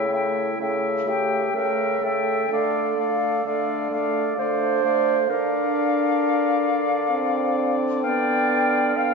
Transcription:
Already playing: bassoon C#3, french horn A3, clarinet E4, oboe E5, flute G5
0.11 french horn A3, oboe E5, flute G5
0.59 bassoon C#3, french horn A3, oboe E5, flute G5
1.06 french horn A3, clarinet G4, oboe E5, flute G5
1.54 bassoon C#3, french horn A3, clarinet A#4, oboe E5, flute G5
2.02 french horn A3, clarinet A4, oboe E5, flute G5
2.49 bassoon D3, french horn A3, oboe D5, flute F5
2.97 french horn A3, oboe D5, flute F5
3.46 bassoon D3, french horn A3, oboe D5, flute F5
3.91 french horn A3, oboe D5, flute F5
4.38 bassoon D3, french horn A3, clarinet C5, oboe D5, flute F5
4.84 french horn A3, oboe D5, flute F5
5.29 bassoon D3, french horn D4, clarinet A#4, oboe D5, flute F5
7.10 french horn C4
8.01 french horn B3, clarinet D5, oboe F5, flute G5
8.96 french horn B3, oboe F5, clarinet F5, flute G5

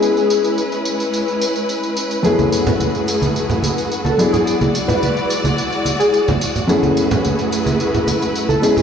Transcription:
Already playing: grand piano G#3 B3 C#4 E4 G#4, string section G#3 C#4 E4 B4
0.02 analog synth lead G#4, tambourine
0.17 analog synth lead G#4, tambourine
0.30 tambourine
0.44 tambourine
0.58 tambourine
0.72 tambourine
0.85 tambourine
1.00 tambourine
1.14 tambourine
1.28 tambourine
1.41 tambourine
1.56 tambourine
1.69 tambourine
1.83 tambourine
1.97 tambourine
2.11 tambourine
2.23 grand piano F#2 A3 B3 C#4 E4 G#4, string section A3 F#4 G#4, tambourine, shaker
2.39 tambourine, high conga
2.52 tambourine, shaker
2.67 tambourine, low conga, shaker
2.80 tambourine, high conga, shaker
2.95 tambourine
3.07 tambourine, shaker
3.22 tambourine, high conga, shaker
3.35 tambourine, shaker
3.50 tambourine, low conga
3.63 tambourine, high bongo, high conga, shaker
3.78 tambourine, shaker
3.91 tambourine, shaker
4.05 analog synth lead A4, tambourine, high conga
4.18 grand piano F#3 B3 D4 E4 G#4, string section G#3 E4 D5, tambourine, shaker
4.33 analog synth lead G#4, tambourine, low conga, shaker
4.46 analog synth lead G#4, tambourine, shaker
4.61 tambourine, high conga
4.75 tambourine, shaker
4.88 analog synth lead B4, tambourine, low conga, shaker
5.02 tambourine, high conga, shaker
5.17 tambourine
5.30 tambourine, shaker
5.44 tambourine, high bongo, high conga, shaker
5.57 tambourine, shaker
5.72 tambourine
5.85 tambourine, high bongo, high conga, shaker
5.99 analog synth lead G#4, tambourine, shaker
6.13 analog synth lead G#4, tambourine, shaker
6.28 tambourine, high conga, low conga
6.41 tambourine, shaker
6.56 tambourine, low conga, shaker
6.68 grand piano F#2 A3 B3 C#4 E4 G#4, string section A3 E4 G#4 B4, tambourine, shaker
6.83 tambourine, high conga
6.97 tambourine, shaker
7.11 tambourine, low conga, shaker
7.25 tambourine, high conga, shaker
7.39 tambourine
7.52 tambourine, shaker
7.66 tambourine, high conga, shaker
7.80 tambourine, shaker
7.94 tambourine, low conga
8.07 tambourine, high bongo, high conga, shaker
8.22 tambourine, shaker
8.35 tambourine, shaker
8.49 analog synth lead A4, tambourine, high conga
8.62 grand piano G#3 B3 C#4 E4 G#4, string section G#3 C#4, tambourine, shaker
8.77 analog synth lead G#4, tambourine, low conga, shaker

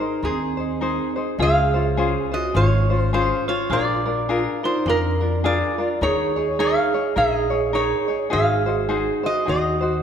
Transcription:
Already playing: vibraphone D#4, resonator guitar played with a steel bar A#4
0.00 ukulele D#4 G#4 C5
0.23 upright bass D#2, vibraphone C4, ukulele D#4 G#4 A#4 C5, resonator guitar played with a steel bar G#4
0.57 ukulele D#4 G#4 C5
0.81 ukulele D#4 G#4 A#4 C5
1.16 ukulele D#4 G#4 C5
1.39 upright bass C#2, ukulele C#4 F4 G#4 C5, vibraphone G#4, resonator guitar played with a steel bar F5
1.74 ukulele C#4 F4 C5
1.97 ukulele C#4 F4 G#4 C5
2.32 ukulele C#4 F4 C5, vibraphone F#4, resonator guitar played with a steel bar D#5
2.54 upright bass G#1, ukulele C#4 F4 G#4 C5, vibraphone F4, resonator guitar played with a steel bar C#5
2.90 ukulele C#4 F4 C5
2.99 resonator guitar played with a steel bar C5
3.13 ukulele C#4 F4 G#4 C5, vibraphone F4, resonator guitar played with a steel bar C5
3.48 ukulele C#4 F4 C5, vibraphone F4, resonator guitar played with a steel bar C#5
3.70 upright bass A#1, ukulele D4 F4 G#4 A#4, vibraphone F4, resonator guitar played with a steel bar D5
4.06 ukulele D4 F4 A#4
4.29 ukulele D4 F4 G#4 A#4
4.63 ukulele D4 F4 A#4, vibraphone D#4, resonator guitar played with a steel bar C5
4.86 upright bass F2, ukulele D4 F4 G#4 A#4, vibraphone D4, resonator guitar played with a steel bar A#4
5.21 ukulele D4 F4 A#4
5.44 ukulele D4 F4 G#4 A#4, vibraphone F4, resonator guitar played with a steel bar D5
5.78 ukulele D4 F4 A#4
6.01 upright bass D#2, ukulele D#4 G#4 A#4 C#5, vibraphone G#4, resonator guitar played with a steel bar C#5
6.36 ukulele D#4 G#4 C#5
6.59 ukulele D#4 G#4 A#4 C#5, vibraphone G#4, resonator guitar played with a steel bar F5
6.94 ukulele D#4 G#4 C#5
7.16 upright bass A#1, ukulele D#4 G#4 A#4 C#5, vibraphone G#4, resonator guitar played with a steel bar D#5
7.50 ukulele D#4 G#4 C#5
7.73 ukulele D#4 G#4 A#4 C#5, vibraphone G#4, resonator guitar played with a steel bar C#5
8.08 ukulele D#4 G#4 C#5
8.30 upright bass G#1, ukulele D#4 F#4 G#4 C5, vibraphone G#4, resonator guitar played with a steel bar F5
8.66 ukulele D#4 F#4 C5
8.89 ukulele D#4 F#4 G#4 C5
9.23 ukulele D#4 F#4 C5, vibraphone F#4, resonator guitar played with a steel bar D#5
9.45 upright bass D#2, ukulele D#4 F#4 G#4 C5, resonator guitar played with a steel bar D#5
9.50 vibraphone F#4
9.81 ukulele D#4 F#4 C5

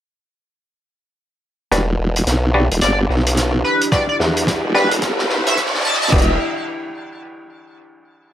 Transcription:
1.72 wobble bass E1, clav D4 F#4 G4 B4, analog synth pad D4 E4 G4, snare, closed hi-hat, riser
1.99 wobble bass E1
2.16 closed hi-hat
2.27 wobble bass B1, snare, closed hi-hat
2.54 clav D4 F#4 G4 B4
2.71 wobble bass E1, closed hi-hat
2.81 wobble bass G1, analog synth lead D5, snare, closed hi-hat
3.09 wobble bass B1, cross-stick
3.16 cross-stick
3.20 cross-stick
3.26 cross-stick, closed hi-hat
3.29 cross-stick
3.34 cross-stick, snare, closed hi-hat
3.64 analog synth lead B4, cross-stick
3.81 closed hi-hat
3.91 clav D4 F#4 G4 B4, analog synth lead D5, kick, snare, closed hi-hat
4.09 analog synth lead D5
4.20 wobble bass E2, snare
4.37 closed hi-hat
4.47 kick, snare, closed hi-hat
4.64 wobble bass E1
4.75 clav D4 F#4 G4 B4, analog synth lead B4, snare
4.91 closed hi-hat
5.02 wobble bass G1, kick, snare, closed hi-hat
5.19 snare
5.30 wobble bass B1, snare
5.47 analog synth lead E5, snare, closed hi-hat
5.57 kick, snare, closed hi-hat
5.66 snare
5.75 snare
5.80 snare
5.85 analog synth lead A5, snare
5.94 snare
6.01 analog synth lead A5, snare, closed hi-hat
6.07 snare, closed hi-hat
6.12 wobble bass E1, clav D4 F#4 G4 B4, analog synth pad E4 D5 F#5 G5, kick, closed hi-hat, crash
6.18 closed hi-hat
6.22 closed hi-hat

